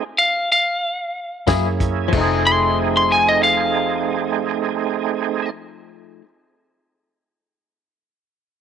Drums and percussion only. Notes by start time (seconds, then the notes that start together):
1.47 kick, snare, closed hi-hat, tambourine
1.80 kick, closed hi-hat
2.13 kick, crash